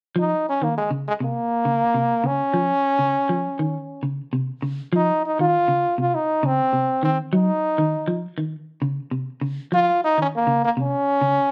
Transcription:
0.16 clean electric guitar F3, trombone D#4
0.49 trombone C#4
0.62 clean electric guitar D#3, trombone A#3
0.78 trombone G#3
0.91 clean electric guitar C#3
1.08 trombone G#3
1.20 clean electric guitar C3, trombone A#3
1.65 clean electric guitar C#3
1.94 clean electric guitar C3
2.24 clean electric guitar C#3, trombone C#4
2.54 clean electric guitar F3
2.99 clean electric guitar C#3
3.29 clean electric guitar F3
3.59 clean electric guitar D#3
4.03 clean electric guitar C#3
4.33 clean electric guitar C3
4.62 clean electric guitar C#3
4.93 clean electric guitar F3, trombone D#4
5.26 trombone D#4
5.39 clean electric guitar D#3, trombone F4
5.68 clean electric guitar C#3
5.98 clean electric guitar C3, trombone F4
6.15 trombone D#4
6.43 clean electric guitar C#3, trombone C4
6.73 clean electric guitar C3
7.03 clean electric guitar D#3, trombone C4
7.33 clean electric guitar F#3, trombone D#4
7.78 clean electric guitar D#3
8.08 clean electric guitar F3
8.38 clean electric guitar D#3
8.82 clean electric guitar C#3
9.11 clean electric guitar C3
9.41 clean electric guitar C#3
9.72 clean electric guitar F3, trombone F4
10.04 trombone D#4
10.18 clean electric guitar D#3, trombone C#4
10.36 trombone A#3
10.47 clean electric guitar C#3
10.65 trombone A#3
10.77 clean electric guitar C3
10.81 trombone C#4
11.21 clean electric guitar C#3

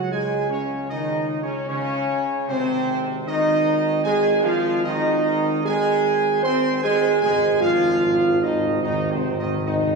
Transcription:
Already playing: tuba C#2, trumpet section F#5
0.11 trombone section G#3, french horn section G#4, trumpet section G#5
0.50 trombone section C#3, french horn section C#4, trumpet section C#5
0.89 trombone section D#3, french horn section D#4, trumpet section D#5
1.42 trombone section C#3, french horn section C#4, trumpet section C#5
1.68 trombone section C#3, french horn section C#4, trumpet section C#5
2.47 tuba G#1, trombone section C3, french horn section C4, trumpet section C5
3.26 trombone section D#3, french horn section D#4, trumpet section D#5
4.04 trombone section G#3, french horn section G#4, trumpet section G#5
4.44 trombone section F3, french horn section F4, trumpet section F5
4.84 trombone section D#3, french horn section D#4, trumpet section D#5
5.65 trombone section G#3, french horn section G#4, trumpet section G#5
6.43 trombone section C4, french horn section C5, trumpet section C6
6.83 trombone section G#3, french horn section G#4, trumpet section G#5
7.22 tuba G#1, timpani G#2, trombone section G#3, french horn section G#4, trumpet section G#5
7.30 timpani G#2
7.38 timpani G#2
7.46 timpani G#2
7.53 timpani G#2
7.60 timpani G#2, trombone section F3, french horn section F4, trumpet section F5
7.68 timpani G#2
7.82 timpani G#2
7.90 timpani G#2
7.97 timpani G#2
8.05 timpani G#2
8.12 timpani G#2
8.28 timpani G#2
8.35 timpani G#2
8.42 timpani G#2, trombone section D#3, french horn section D#4, trumpet section D#5
8.50 timpani G#2
8.58 timpani G#2
8.65 timpani G#2
8.73 timpani G#2
8.81 timpani G#2, trombone section D#3, french horn section D#4, trumpet section D#5
8.90 timpani G#2
8.98 timpani G#2
9.05 timpani G#2
9.10 timpani G#2, trombone section C3, french horn section C4, trumpet section C5
9.21 timpani G#2
9.29 timpani G#2
9.36 timpani G#2, trombone section D#3, trumpet section D#5
9.40 timpani G#2, french horn section D#4
9.51 timpani G#2
9.59 timpani G#2
9.66 timpani G#2, trombone section D#3, french horn section D#4, trumpet section D#5
9.75 timpani G#2
9.90 timpani G#2

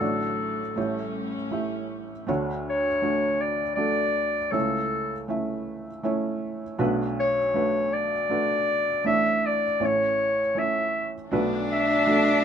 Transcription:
Already playing: clarinet A4
0.00 felt piano A1 A2 A3 D4 F#4 D5, string section A2 D3 F#3
0.76 felt piano A1 A2 A3 E4 G4 C#5, string section G3 C#4
1.51 felt piano A3 E4 G4 E5
2.27 felt piano D2 D3 A3 D4 F#4 C#5
2.69 clarinet C#5
3.02 felt piano A3 D4 F#4 C#5
3.41 clarinet D5
3.75 felt piano A3 D4 F#4 A4, clarinet D5
4.52 felt piano C#2 C#3 A3 C#4 E4 C#5, clarinet A4
5.28 felt piano A3 C#4 E4 E5
6.03 felt piano A3 C#4 E4 C#5
6.78 felt piano B1 B2 A3 D4 F#4 B4
7.19 clarinet C#5
7.54 felt piano A3 D4 F#4 B4
7.93 clarinet D5
8.29 felt piano A3 D4 F#4 B4
9.05 felt piano A1 A2 A3 D4 E4 D5, clarinet E5
9.46 clarinet D5
9.80 felt piano A1 A2 A3 C#4 E4 C#5
9.85 clarinet C#5
10.55 felt piano A3 C#4 E4 C#5, clarinet E5
11.29 felt piano B1 B2 A3 D4 F#4 B4, string section B2 A3 D4, cello D4
11.72 clarinet E5
12.07 felt piano A3 D4 F#4 A4

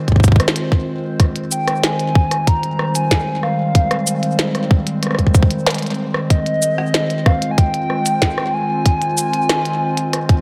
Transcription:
Already playing: ambient pad D#3 G#3 C4 F4 C5
0.08 kick, closed hi-hat
0.12 kick
0.16 kick
0.20 kick
0.24 kick, cabasa
0.28 kick
0.32 kick
0.36 kick
0.40 cross-stick, closed hi-hat
0.48 snare
0.56 closed hi-hat
0.72 kick
1.20 kick, cross-stick, closed hi-hat
1.36 closed hi-hat
1.52 soft synth lead G5, cabasa
1.68 cross-stick, closed hi-hat
1.84 soft synth lead G#5, snare, closed hi-hat
1.92 ambient pad G3
1.99 closed hi-hat
2.15 kick
2.31 cross-stick, closed hi-hat
2.47 soft synth lead A#5, kick, closed hi-hat
2.63 closed hi-hat
2.79 cross-stick
2.95 soft synth lead G#5, closed hi-hat, cabasa
3.11 kick, snare, closed hi-hat
3.43 soft synth lead F5, cross-stick
3.75 kick, closed hi-hat
3.91 cross-stick, closed hi-hat
4.07 cabasa
4.23 closed hi-hat
4.39 snare, closed hi-hat
4.55 cross-stick, closed hi-hat
4.71 kick
4.87 closed hi-hat
5.03 cross-stick, closed hi-hat
5.07 cross-stick
5.11 cross-stick
5.15 kick, cross-stick
5.19 closed hi-hat
5.27 kick
5.35 kick, cabasa
5.43 kick
5.51 closed hi-hat
5.67 cross-stick, snare, closed hi-hat
5.70 closed hi-hat
5.74 closed hi-hat
5.78 closed hi-hat
5.82 closed hi-hat
5.86 closed hi-hat
5.90 closed hi-hat
5.94 closed hi-hat
6.14 cross-stick
6.30 soft synth lead D#5, kick, closed hi-hat
6.46 closed hi-hat
6.62 cabasa
6.73 ambient pad F4
6.78 cross-stick
6.94 snare, closed hi-hat
7.10 closed hi-hat
7.26 soft synth lead F5, kick, cross-stick
7.42 closed hi-hat
7.51 soft synth lead G#5
7.58 soft synth lead G5, kick, closed hi-hat
7.74 closed hi-hat
7.90 cross-stick
8.06 closed hi-hat, cabasa
8.22 kick, snare, closed hi-hat
8.38 cross-stick
8.54 soft synth lead G#5
8.86 kick, closed hi-hat
9.02 closed hi-hat
9.18 cabasa
9.33 closed hi-hat
9.49 cross-stick, snare, closed hi-hat
9.65 closed hi-hat
9.97 closed hi-hat
10.13 cross-stick, closed hi-hat
10.29 kick, closed hi-hat

